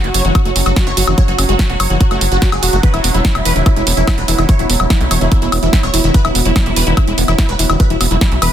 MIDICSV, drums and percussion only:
0, 0, Header, 1, 2, 480
1, 0, Start_track
1, 0, Tempo, 413793
1, 1366, Time_signature, 4, 2, 24, 8
1, 9892, End_track
2, 0, Start_track
2, 0, Title_t, "Drums"
2, 47, Note_on_c, 9, 42, 38
2, 163, Note_off_c, 9, 42, 0
2, 167, Note_on_c, 9, 46, 108
2, 283, Note_off_c, 9, 46, 0
2, 287, Note_on_c, 9, 42, 38
2, 403, Note_off_c, 9, 42, 0
2, 407, Note_on_c, 9, 36, 127
2, 407, Note_on_c, 9, 42, 62
2, 407, Note_on_c, 9, 76, 76
2, 523, Note_off_c, 9, 36, 0
2, 523, Note_off_c, 9, 42, 0
2, 523, Note_off_c, 9, 76, 0
2, 527, Note_on_c, 9, 42, 39
2, 643, Note_off_c, 9, 42, 0
2, 647, Note_on_c, 9, 46, 108
2, 763, Note_off_c, 9, 46, 0
2, 767, Note_on_c, 9, 42, 39
2, 767, Note_on_c, 9, 76, 39
2, 883, Note_off_c, 9, 42, 0
2, 883, Note_off_c, 9, 76, 0
2, 887, Note_on_c, 9, 36, 123
2, 887, Note_on_c, 9, 38, 123
2, 887, Note_on_c, 9, 42, 67
2, 1003, Note_off_c, 9, 36, 0
2, 1003, Note_off_c, 9, 38, 0
2, 1003, Note_off_c, 9, 42, 0
2, 1007, Note_on_c, 9, 42, 39
2, 1123, Note_off_c, 9, 42, 0
2, 1127, Note_on_c, 9, 46, 116
2, 1243, Note_off_c, 9, 46, 0
2, 1247, Note_on_c, 9, 42, 38
2, 1247, Note_on_c, 9, 76, 76
2, 1363, Note_off_c, 9, 42, 0
2, 1363, Note_off_c, 9, 76, 0
2, 1366, Note_on_c, 9, 36, 124
2, 1367, Note_on_c, 9, 42, 62
2, 1482, Note_off_c, 9, 36, 0
2, 1483, Note_off_c, 9, 42, 0
2, 1487, Note_on_c, 9, 42, 39
2, 1603, Note_off_c, 9, 42, 0
2, 1607, Note_on_c, 9, 46, 108
2, 1607, Note_on_c, 9, 76, 40
2, 1723, Note_off_c, 9, 46, 0
2, 1723, Note_off_c, 9, 76, 0
2, 1727, Note_on_c, 9, 42, 38
2, 1843, Note_off_c, 9, 42, 0
2, 1846, Note_on_c, 9, 36, 124
2, 1847, Note_on_c, 9, 38, 121
2, 1847, Note_on_c, 9, 42, 65
2, 1962, Note_off_c, 9, 36, 0
2, 1963, Note_off_c, 9, 38, 0
2, 1963, Note_off_c, 9, 42, 0
2, 1967, Note_on_c, 9, 42, 37
2, 2083, Note_off_c, 9, 42, 0
2, 2087, Note_on_c, 9, 46, 110
2, 2087, Note_on_c, 9, 76, 82
2, 2203, Note_off_c, 9, 46, 0
2, 2203, Note_off_c, 9, 76, 0
2, 2207, Note_on_c, 9, 42, 37
2, 2323, Note_off_c, 9, 42, 0
2, 2326, Note_on_c, 9, 36, 124
2, 2327, Note_on_c, 9, 42, 61
2, 2442, Note_off_c, 9, 36, 0
2, 2443, Note_off_c, 9, 42, 0
2, 2447, Note_on_c, 9, 42, 38
2, 2447, Note_on_c, 9, 76, 41
2, 2563, Note_off_c, 9, 42, 0
2, 2563, Note_off_c, 9, 76, 0
2, 2567, Note_on_c, 9, 46, 110
2, 2683, Note_off_c, 9, 46, 0
2, 2687, Note_on_c, 9, 42, 38
2, 2803, Note_off_c, 9, 42, 0
2, 2807, Note_on_c, 9, 36, 127
2, 2807, Note_on_c, 9, 38, 120
2, 2807, Note_on_c, 9, 42, 65
2, 2923, Note_off_c, 9, 36, 0
2, 2923, Note_off_c, 9, 38, 0
2, 2923, Note_off_c, 9, 42, 0
2, 2927, Note_on_c, 9, 42, 38
2, 2927, Note_on_c, 9, 76, 79
2, 3043, Note_off_c, 9, 42, 0
2, 3043, Note_off_c, 9, 76, 0
2, 3047, Note_on_c, 9, 46, 110
2, 3163, Note_off_c, 9, 46, 0
2, 3167, Note_on_c, 9, 42, 38
2, 3283, Note_off_c, 9, 42, 0
2, 3287, Note_on_c, 9, 36, 119
2, 3287, Note_on_c, 9, 42, 61
2, 3403, Note_off_c, 9, 36, 0
2, 3403, Note_off_c, 9, 42, 0
2, 3407, Note_on_c, 9, 42, 38
2, 3407, Note_on_c, 9, 76, 42
2, 3523, Note_off_c, 9, 42, 0
2, 3523, Note_off_c, 9, 76, 0
2, 3527, Note_on_c, 9, 46, 108
2, 3643, Note_off_c, 9, 46, 0
2, 3647, Note_on_c, 9, 42, 38
2, 3763, Note_off_c, 9, 42, 0
2, 3767, Note_on_c, 9, 36, 122
2, 3767, Note_on_c, 9, 38, 116
2, 3767, Note_on_c, 9, 42, 66
2, 3883, Note_off_c, 9, 36, 0
2, 3883, Note_off_c, 9, 38, 0
2, 3883, Note_off_c, 9, 42, 0
2, 3887, Note_on_c, 9, 42, 37
2, 3887, Note_on_c, 9, 76, 82
2, 4003, Note_off_c, 9, 42, 0
2, 4003, Note_off_c, 9, 76, 0
2, 4007, Note_on_c, 9, 46, 104
2, 4123, Note_off_c, 9, 46, 0
2, 4127, Note_on_c, 9, 42, 37
2, 4243, Note_off_c, 9, 42, 0
2, 4247, Note_on_c, 9, 36, 122
2, 4247, Note_on_c, 9, 42, 61
2, 4247, Note_on_c, 9, 76, 42
2, 4363, Note_off_c, 9, 36, 0
2, 4363, Note_off_c, 9, 42, 0
2, 4363, Note_off_c, 9, 76, 0
2, 4367, Note_on_c, 9, 42, 38
2, 4483, Note_off_c, 9, 42, 0
2, 4487, Note_on_c, 9, 46, 104
2, 4603, Note_off_c, 9, 46, 0
2, 4607, Note_on_c, 9, 42, 38
2, 4723, Note_off_c, 9, 42, 0
2, 4727, Note_on_c, 9, 36, 120
2, 4727, Note_on_c, 9, 38, 114
2, 4727, Note_on_c, 9, 42, 64
2, 4727, Note_on_c, 9, 76, 84
2, 4843, Note_off_c, 9, 36, 0
2, 4843, Note_off_c, 9, 38, 0
2, 4843, Note_off_c, 9, 42, 0
2, 4843, Note_off_c, 9, 76, 0
2, 4847, Note_on_c, 9, 42, 38
2, 4963, Note_off_c, 9, 42, 0
2, 4967, Note_on_c, 9, 46, 107
2, 5083, Note_off_c, 9, 46, 0
2, 5087, Note_on_c, 9, 42, 39
2, 5087, Note_on_c, 9, 76, 43
2, 5203, Note_off_c, 9, 42, 0
2, 5203, Note_off_c, 9, 76, 0
2, 5207, Note_on_c, 9, 36, 117
2, 5207, Note_on_c, 9, 42, 64
2, 5323, Note_off_c, 9, 36, 0
2, 5323, Note_off_c, 9, 42, 0
2, 5327, Note_on_c, 9, 42, 39
2, 5443, Note_off_c, 9, 42, 0
2, 5447, Note_on_c, 9, 46, 98
2, 5563, Note_off_c, 9, 46, 0
2, 5567, Note_on_c, 9, 42, 39
2, 5567, Note_on_c, 9, 76, 82
2, 5683, Note_off_c, 9, 42, 0
2, 5683, Note_off_c, 9, 76, 0
2, 5687, Note_on_c, 9, 36, 112
2, 5687, Note_on_c, 9, 38, 114
2, 5687, Note_on_c, 9, 42, 67
2, 5803, Note_off_c, 9, 36, 0
2, 5803, Note_off_c, 9, 38, 0
2, 5803, Note_off_c, 9, 42, 0
2, 5807, Note_on_c, 9, 42, 39
2, 5923, Note_off_c, 9, 42, 0
2, 5927, Note_on_c, 9, 46, 103
2, 5927, Note_on_c, 9, 76, 41
2, 6043, Note_off_c, 9, 46, 0
2, 6043, Note_off_c, 9, 76, 0
2, 6047, Note_on_c, 9, 42, 38
2, 6163, Note_off_c, 9, 42, 0
2, 6167, Note_on_c, 9, 36, 119
2, 6167, Note_on_c, 9, 42, 62
2, 6283, Note_off_c, 9, 36, 0
2, 6283, Note_off_c, 9, 42, 0
2, 6287, Note_on_c, 9, 42, 39
2, 6403, Note_off_c, 9, 42, 0
2, 6407, Note_on_c, 9, 46, 100
2, 6407, Note_on_c, 9, 76, 83
2, 6523, Note_off_c, 9, 46, 0
2, 6523, Note_off_c, 9, 76, 0
2, 6527, Note_on_c, 9, 42, 40
2, 6643, Note_off_c, 9, 42, 0
2, 6647, Note_on_c, 9, 36, 115
2, 6647, Note_on_c, 9, 38, 115
2, 6647, Note_on_c, 9, 42, 65
2, 6763, Note_off_c, 9, 36, 0
2, 6763, Note_off_c, 9, 38, 0
2, 6763, Note_off_c, 9, 42, 0
2, 6767, Note_on_c, 9, 42, 41
2, 6767, Note_on_c, 9, 76, 43
2, 6883, Note_off_c, 9, 42, 0
2, 6883, Note_off_c, 9, 76, 0
2, 6887, Note_on_c, 9, 46, 103
2, 7003, Note_off_c, 9, 46, 0
2, 7007, Note_on_c, 9, 42, 39
2, 7123, Note_off_c, 9, 42, 0
2, 7127, Note_on_c, 9, 36, 113
2, 7127, Note_on_c, 9, 42, 66
2, 7243, Note_off_c, 9, 36, 0
2, 7243, Note_off_c, 9, 42, 0
2, 7247, Note_on_c, 9, 42, 40
2, 7247, Note_on_c, 9, 76, 83
2, 7363, Note_off_c, 9, 42, 0
2, 7363, Note_off_c, 9, 76, 0
2, 7367, Note_on_c, 9, 46, 99
2, 7483, Note_off_c, 9, 46, 0
2, 7487, Note_on_c, 9, 42, 41
2, 7603, Note_off_c, 9, 42, 0
2, 7607, Note_on_c, 9, 36, 113
2, 7607, Note_on_c, 9, 38, 120
2, 7607, Note_on_c, 9, 42, 71
2, 7607, Note_on_c, 9, 76, 42
2, 7723, Note_off_c, 9, 36, 0
2, 7723, Note_off_c, 9, 38, 0
2, 7723, Note_off_c, 9, 42, 0
2, 7723, Note_off_c, 9, 76, 0
2, 7727, Note_on_c, 9, 42, 40
2, 7843, Note_off_c, 9, 42, 0
2, 7847, Note_on_c, 9, 46, 101
2, 7963, Note_off_c, 9, 46, 0
2, 7967, Note_on_c, 9, 42, 40
2, 8083, Note_off_c, 9, 42, 0
2, 8087, Note_on_c, 9, 36, 112
2, 8087, Note_on_c, 9, 42, 66
2, 8087, Note_on_c, 9, 76, 78
2, 8203, Note_off_c, 9, 36, 0
2, 8203, Note_off_c, 9, 42, 0
2, 8203, Note_off_c, 9, 76, 0
2, 8207, Note_on_c, 9, 42, 41
2, 8323, Note_off_c, 9, 42, 0
2, 8327, Note_on_c, 9, 46, 102
2, 8443, Note_off_c, 9, 46, 0
2, 8447, Note_on_c, 9, 42, 43
2, 8447, Note_on_c, 9, 76, 42
2, 8563, Note_off_c, 9, 42, 0
2, 8563, Note_off_c, 9, 76, 0
2, 8567, Note_on_c, 9, 36, 117
2, 8567, Note_on_c, 9, 38, 114
2, 8567, Note_on_c, 9, 42, 69
2, 8683, Note_off_c, 9, 36, 0
2, 8683, Note_off_c, 9, 38, 0
2, 8683, Note_off_c, 9, 42, 0
2, 8687, Note_on_c, 9, 42, 41
2, 8803, Note_off_c, 9, 42, 0
2, 8807, Note_on_c, 9, 46, 100
2, 8923, Note_off_c, 9, 46, 0
2, 8927, Note_on_c, 9, 42, 42
2, 8927, Note_on_c, 9, 76, 80
2, 9043, Note_off_c, 9, 42, 0
2, 9043, Note_off_c, 9, 76, 0
2, 9047, Note_on_c, 9, 36, 113
2, 9047, Note_on_c, 9, 42, 70
2, 9163, Note_off_c, 9, 36, 0
2, 9163, Note_off_c, 9, 42, 0
2, 9167, Note_on_c, 9, 42, 41
2, 9283, Note_off_c, 9, 42, 0
2, 9288, Note_on_c, 9, 46, 102
2, 9288, Note_on_c, 9, 76, 38
2, 9404, Note_off_c, 9, 46, 0
2, 9404, Note_off_c, 9, 76, 0
2, 9407, Note_on_c, 9, 42, 43
2, 9523, Note_off_c, 9, 42, 0
2, 9527, Note_on_c, 9, 36, 117
2, 9527, Note_on_c, 9, 38, 123
2, 9527, Note_on_c, 9, 42, 72
2, 9643, Note_off_c, 9, 36, 0
2, 9643, Note_off_c, 9, 38, 0
2, 9643, Note_off_c, 9, 42, 0
2, 9647, Note_on_c, 9, 42, 40
2, 9763, Note_off_c, 9, 42, 0
2, 9767, Note_on_c, 9, 46, 101
2, 9767, Note_on_c, 9, 76, 79
2, 9883, Note_off_c, 9, 46, 0
2, 9883, Note_off_c, 9, 76, 0
2, 9892, End_track
0, 0, End_of_file